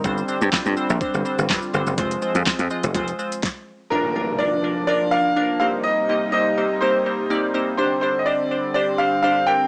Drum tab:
HH |----------------|xx-xxx-xxx-x----|----------------|----------------|
SH |xxxxxxxxxxxxxxxx|xxxxxxxxxxxx----|----------------|----------------|
CP |----x-------x---|----x-----------|----------------|----------------|
SD |----o-------o---|----o-------o---|----------------|----------------|
BD |o---o---o---o---|o---o---o---o---|----------------|----------------|

HH |----------------|
SH |----------------|
CP |----------------|
SD |----------------|
BD |----------------|